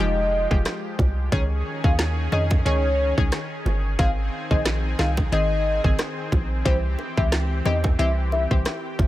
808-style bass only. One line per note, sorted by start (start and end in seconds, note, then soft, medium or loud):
0.00 0.47 F1 loud
0.51 0.64 F1 medium
0.99 1.29 C2 medium
1.32 1.63 C#2 loud
1.84 2.28 D#2 loud
2.32 2.63 F2 medium
2.65 3.14 C#2 loud
3.18 3.31 C#2 medium
3.66 3.96 G1 medium
3.99 4.30 G#1 loud
4.51 4.95 A#1 loud
4.99 5.30 C2 medium
5.32 5.80 G#1 medium
5.84 5.98 G#1 medium
6.32 6.63 A#1 medium
6.66 6.96 C2 loud
7.17 7.62 C#2 loud
7.66 7.96 E2 loud
7.99 8.47 C2 loud
8.51 8.64 C2 medium
8.99 9.07 G1 medium